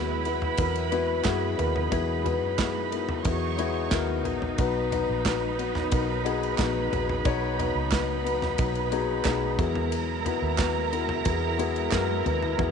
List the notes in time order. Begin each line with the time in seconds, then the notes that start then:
Already playing: D#2 B2 F#3 G#3 B3 E4 F#4 G#4 B4 B5
0.25 B3 E4 F#4 B4, ride
0.42 floor tom
0.57 E2 B3 E4 F#4 A#4, kick, ride
0.75 ride
0.91 B3 E4 F#4 B4, ride
1.24 F#2 B3 E4 F#4 G#4, kick, snare, clap, ride
1.57 D#2 B2 B3 D#4 E4 F#4 A#4, floor tom, ride
1.76 floor tom
1.90 E2 B3 E4 F#4 G#4, kick, ride
2.24 B3 E4 F#4 B4, floor tom, ride
2.42 F#2
2.58 B3 E4 F#4 G#4, kick, snare, clap, ride
2.91 B3 E4 F#4 A#4, ride
3.09 floor tom
3.25 E2 B3 E4 F#4 G#4 C#5 C#6, kick, ride
3.58 B3 E4 F#4 G#4, ride
3.90 D#2 B3 E4 F#4 A#4, kick, snare, clap, ride
4.24 A#1 B3 E4 F#4 A#4, floor tom, ride
4.42 floor tom
4.58 B1 B3 D#4 F#4 B4 B5, kick, ride
4.91 B3 D#4 F#4 B4, floor tom, ride
5.09 A#1
5.25 B3 D#4 F#4 B4, kick, snare, clap, ride
5.58 B3 D#4 F#4 B4, ride
5.75 snare, floor tom
5.91 B1 B3 D#4 F#4 A#4, kick, ride
6.24 B3 D#4 F#4 G#4, ride
6.43 ride
6.58 A#1 B3 D#4 F#4 B4, kick, snare, clap, ride
6.91 A#1 B3 D#4 F#4 G#4, floor tom, ride
7.09 floor tom
7.24 B1 A#2 B3 D#4 F#4 C#5, kick, ride
7.58 B3 D#4 F#4 B4, floor tom, ride
7.75 C#2
7.90 B3 D#4 F#4 B4, kick, snare, clap, ride
8.24 B3 D#4 F#4 B4, ride
8.42 snare, floor tom
8.57 B1 B3 D#4 F#4 B4, kick, ride
8.75 ride
8.91 B3 D#4 F#4 G#4, ride
9.24 B1 B3 D#4 F#4 G#4, kick, snare, clap, ride
9.58 E2 B2 G#3 B3 E4 F#4 G#4 A#4 A#5, kick, floor tom, ride
9.75 floor tom
9.92 ride
10.25 B3 E4 F#4 B4, floor tom, ride
10.42 D#2
10.58 B3 E4 F#4 B4, kick, snare, clap, ride
10.92 B3 E4 F#4 A#4, ride
11.09 floor tom
11.25 E2 B3 E4 F#4 G#4, kick, ride
11.58 B3 E4 F#4 G#4, ride
11.76 ride
11.91 F#2 B3 E4 F#4 A#4, kick, snare, clap, ride
12.24 D#2 B2 B3 E4 F#4 B4, floor tom, ride
12.42 floor tom
12.57 E2 B3 E4 F#4 G#4, kick, high tom